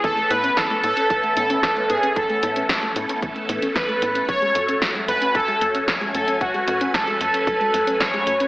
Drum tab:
HH |xxxxxxxxxxxxxxxx|xxxxxxxxxxxxxxxx|xxxxxxxxxxxxxxxx|xxxxxxxxxxxxxxxx|
SD |----o-------o---|----o-------o---|----o-------o---|----o-------o---|
BD |o---o---o---o---|o---o---o---o---|o---o---o---o---|o---o---o---o---|